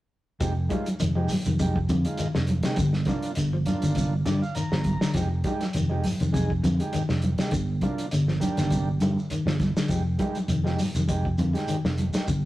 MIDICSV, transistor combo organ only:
0, 0, Header, 1, 2, 480
1, 0, Start_track
1, 0, Tempo, 593472
1, 328, Time_signature, 4, 2, 24, 8
1, 10071, End_track
2, 0, Start_track
2, 0, Title_t, "Transistor combo organ"
2, 0, Program_c, 0, 18
2, 325, Note_on_c, 0, 56, 80
2, 330, Note_on_c, 0, 63, 75
2, 334, Note_on_c, 0, 67, 95
2, 429, Note_off_c, 0, 56, 0
2, 431, Note_off_c, 0, 63, 0
2, 433, Note_off_c, 0, 67, 0
2, 559, Note_on_c, 0, 56, 79
2, 563, Note_on_c, 0, 63, 72
2, 572, Note_on_c, 0, 65, 90
2, 713, Note_off_c, 0, 56, 0
2, 715, Note_off_c, 0, 63, 0
2, 720, Note_off_c, 0, 65, 0
2, 932, Note_on_c, 0, 56, 78
2, 933, Note_on_c, 0, 63, 72
2, 939, Note_on_c, 0, 67, 82
2, 1067, Note_off_c, 0, 56, 0
2, 1067, Note_off_c, 0, 63, 0
2, 1070, Note_off_c, 0, 67, 0
2, 1294, Note_on_c, 0, 56, 75
2, 1294, Note_on_c, 0, 63, 68
2, 1301, Note_on_c, 0, 67, 83
2, 1441, Note_off_c, 0, 56, 0
2, 1441, Note_off_c, 0, 63, 0
2, 1445, Note_off_c, 0, 67, 0
2, 1658, Note_on_c, 0, 56, 89
2, 1661, Note_on_c, 0, 63, 78
2, 1664, Note_on_c, 0, 65, 93
2, 1841, Note_off_c, 0, 56, 0
2, 1843, Note_off_c, 0, 63, 0
2, 1844, Note_off_c, 0, 65, 0
2, 2139, Note_on_c, 0, 56, 79
2, 2144, Note_on_c, 0, 63, 72
2, 2146, Note_on_c, 0, 67, 89
2, 2249, Note_off_c, 0, 56, 0
2, 2252, Note_off_c, 0, 63, 0
2, 2253, Note_off_c, 0, 67, 0
2, 2488, Note_on_c, 0, 58, 76
2, 2494, Note_on_c, 0, 62, 72
2, 2496, Note_on_c, 0, 65, 82
2, 2681, Note_off_c, 0, 58, 0
2, 2684, Note_off_c, 0, 62, 0
2, 2685, Note_off_c, 0, 65, 0
2, 2961, Note_on_c, 0, 58, 85
2, 2963, Note_on_c, 0, 62, 76
2, 2966, Note_on_c, 0, 65, 83
2, 3349, Note_off_c, 0, 58, 0
2, 3350, Note_off_c, 0, 62, 0
2, 3352, Note_off_c, 0, 65, 0
2, 3446, Note_on_c, 0, 74, 67
2, 3570, Note_off_c, 0, 74, 0
2, 3576, Note_on_c, 0, 77, 68
2, 3680, Note_off_c, 0, 77, 0
2, 3683, Note_on_c, 0, 82, 70
2, 4135, Note_off_c, 0, 82, 0
2, 4163, Note_on_c, 0, 56, 84
2, 4168, Note_on_c, 0, 63, 79
2, 4175, Note_on_c, 0, 67, 88
2, 4269, Note_off_c, 0, 56, 0
2, 4272, Note_off_c, 0, 63, 0
2, 4275, Note_off_c, 0, 67, 0
2, 4405, Note_on_c, 0, 56, 84
2, 4406, Note_on_c, 0, 63, 79
2, 4410, Note_on_c, 0, 67, 95
2, 4557, Note_off_c, 0, 56, 0
2, 4558, Note_off_c, 0, 63, 0
2, 4560, Note_off_c, 0, 67, 0
2, 4767, Note_on_c, 0, 56, 78
2, 4768, Note_on_c, 0, 63, 76
2, 4775, Note_on_c, 0, 67, 81
2, 4905, Note_off_c, 0, 56, 0
2, 4906, Note_off_c, 0, 63, 0
2, 4909, Note_off_c, 0, 67, 0
2, 5115, Note_on_c, 0, 56, 74
2, 5117, Note_on_c, 0, 63, 69
2, 5123, Note_on_c, 0, 68, 87
2, 5272, Note_off_c, 0, 56, 0
2, 5273, Note_off_c, 0, 63, 0
2, 5276, Note_off_c, 0, 68, 0
2, 5494, Note_on_c, 0, 56, 88
2, 5503, Note_on_c, 0, 63, 79
2, 5503, Note_on_c, 0, 67, 88
2, 5680, Note_off_c, 0, 56, 0
2, 5684, Note_off_c, 0, 63, 0
2, 5684, Note_off_c, 0, 67, 0
2, 5982, Note_on_c, 0, 56, 74
2, 5986, Note_on_c, 0, 67, 87
2, 5989, Note_on_c, 0, 63, 74
2, 6090, Note_off_c, 0, 56, 0
2, 6092, Note_off_c, 0, 67, 0
2, 6094, Note_off_c, 0, 63, 0
2, 6324, Note_on_c, 0, 58, 75
2, 6333, Note_on_c, 0, 62, 69
2, 6335, Note_on_c, 0, 65, 87
2, 6519, Note_off_c, 0, 58, 0
2, 6523, Note_off_c, 0, 62, 0
2, 6524, Note_off_c, 0, 65, 0
2, 6792, Note_on_c, 0, 58, 75
2, 6801, Note_on_c, 0, 62, 72
2, 6801, Note_on_c, 0, 67, 84
2, 7184, Note_off_c, 0, 58, 0
2, 7188, Note_off_c, 0, 62, 0
2, 7188, Note_off_c, 0, 67, 0
2, 7996, Note_on_c, 0, 56, 82
2, 7999, Note_on_c, 0, 63, 74
2, 8003, Note_on_c, 0, 67, 89
2, 8104, Note_off_c, 0, 56, 0
2, 8106, Note_off_c, 0, 63, 0
2, 8108, Note_off_c, 0, 67, 0
2, 8236, Note_on_c, 0, 56, 78
2, 8241, Note_on_c, 0, 63, 73
2, 8244, Note_on_c, 0, 67, 87
2, 8391, Note_off_c, 0, 56, 0
2, 8394, Note_off_c, 0, 63, 0
2, 8396, Note_off_c, 0, 67, 0
2, 8603, Note_on_c, 0, 56, 76
2, 8610, Note_on_c, 0, 63, 71
2, 8612, Note_on_c, 0, 67, 87
2, 8742, Note_off_c, 0, 56, 0
2, 8746, Note_off_c, 0, 63, 0
2, 8747, Note_off_c, 0, 67, 0
2, 8959, Note_on_c, 0, 56, 84
2, 8966, Note_on_c, 0, 63, 71
2, 8969, Note_on_c, 0, 67, 86
2, 9113, Note_off_c, 0, 56, 0
2, 9116, Note_off_c, 0, 63, 0
2, 9118, Note_off_c, 0, 67, 0
2, 9328, Note_on_c, 0, 63, 75
2, 9329, Note_on_c, 0, 56, 86
2, 9335, Note_on_c, 0, 67, 96
2, 9516, Note_off_c, 0, 56, 0
2, 9516, Note_off_c, 0, 63, 0
2, 9519, Note_off_c, 0, 67, 0
2, 9814, Note_on_c, 0, 56, 74
2, 9816, Note_on_c, 0, 63, 73
2, 9824, Note_on_c, 0, 67, 82
2, 9926, Note_off_c, 0, 56, 0
2, 9927, Note_off_c, 0, 63, 0
2, 9931, Note_off_c, 0, 67, 0
2, 10071, End_track
0, 0, End_of_file